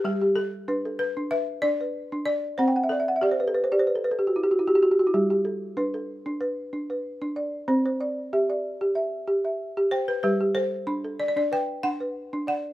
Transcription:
balafon
0.04 G3 G4
0.22 G4
0.36 A4
0.68 D4 B4
0.85 A4
0.99 B4
1.17 D4
1.31 B4 E5
1.62 D4 D5
1.81 B4
2.12 D4
2.26 D5
2.58 C4 C5 F#5
2.68 G5
2.76 F#5
2.83 E5
2.89 A4 D5
3.00 E5
3.08 F#5
3.16 E5
3.21 G4 D5
3.31 C5
3.40 B4
3.48 A4
3.55 B4
3.64 C5
3.72 G4 D5
3.79 C5
3.87 B4
3.95 A4
4.04 B4
4.11 A4
4.19 G4
4.27 F#4
4.36 E4
4.44 G4
4.51 F#4
4.59 E4
4.67 F#4 G4
4.75 G4
4.83 F#4
4.91 G4
4.99 F#4
5.07 E4
5.14 G3 G4
5.30 G4
5.45 A4
5.77 D4 B4
5.94 A4
6.26 D4
6.41 B4
6.73 D4
6.90 B4
7.22 D4
7.36 D5
7.68 C4 C5
7.86 C5
8.01 D5
8.33 G4 E5
8.50 D5
8.81 G4
8.95 E5
9.28 G4
9.45 E5
9.77 G4
9.91 C5 G5
10.08 B4
10.23 G3 G4 B4
10.41 G4
10.55 A4 C5
10.87 D4 B5
11.04 A4
11.20 D5
11.28 D5
11.36 D4 D5
11.52 B4 G5
11.83 D4 F#5
12.00 B4
12.33 D4
12.47 D5 F#5

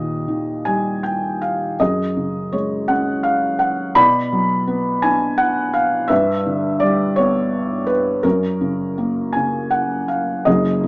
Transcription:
felt piano
Already playing: D#2 A#2 G4 D#5
0.28 D#3
0.65 G3 G#5
1.03 G5
1.42 F5
1.80 F#2 G#4 D#5
2.17 C#3
2.52 G#3 C#5
2.88 C#4 F#5
3.23 F5
3.59 F#5
3.95 B2 D5 B5
4.32 F#3
4.67 B3
5.02 D4 G#5
5.38 F#5
5.74 F5
6.08 G2 B4 E5
6.46 D3
6.80 G3 D5
7.16 B3 C#5
7.87 B4
8.23 F#2 C#4 A#4
8.61 C#3
8.98 A#3
9.33 C#3 G#5
9.71 F#5
10.08 F5
10.45 F#1 F#2 G#4 D#5
10.84 C#3

